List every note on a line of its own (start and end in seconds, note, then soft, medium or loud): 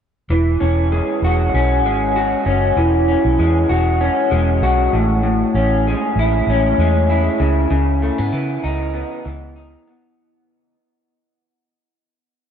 0.30 0.55 E1 medium
0.30 2.77 E3 medium
0.60 1.00 E1 medium
0.60 1.54 C#4 medium
0.92 1.85 G#3 medium
1.22 1.47 E1 medium
1.22 2.15 F#4 medium
1.54 1.84 B1 medium
1.54 2.46 C#4 medium
1.84 2.34 G#1 medium
1.84 3.39 G#3 medium
2.16 3.68 F#4 medium
2.46 2.71 F#1 medium
2.46 3.08 C#4 soft
2.76 3.15 E1 medium
2.76 6.27 E3 medium
3.08 4.00 C#4 soft
3.25 3.36 B1 medium
3.38 3.63 E2 medium
3.38 4.31 G#3 medium
3.69 4.08 E1 medium
3.69 4.62 F#4 medium
4.01 5.55 C#4 medium
4.31 4.62 E1 medium
4.31 5.26 G#3 medium
4.62 4.87 B1 medium
4.62 5.00 F#4 medium
4.93 5.42 A1 medium
4.93 5.22 A2 medium
5.23 7.46 A2 medium
5.54 5.93 A1 medium
5.54 6.49 C#4 medium
5.87 6.79 G#3 medium
6.16 6.41 A1 medium
6.16 7.09 E4 medium
6.47 6.72 A1 medium
6.47 8.02 C#4 medium
6.78 7.27 E2 medium
6.78 8.05 G#3 medium
7.10 8.63 E4 medium
7.40 7.64 C#2 medium
7.40 7.70 C#3 medium
7.70 8.09 C#2 medium
7.70 10.75 C#3 medium
8.02 8.18 A3 medium
8.18 8.30 G#2 medium
8.18 8.92 B3 soft
8.32 8.57 C#3 medium
8.32 9.25 E3 medium
8.63 9.02 C#2 medium
8.63 9.56 D#4 medium
8.94 9.87 B3 medium
9.25 9.75 C#2 medium
9.25 10.75 E3 medium
9.56 10.75 D#4 medium
9.87 10.75 B3 soft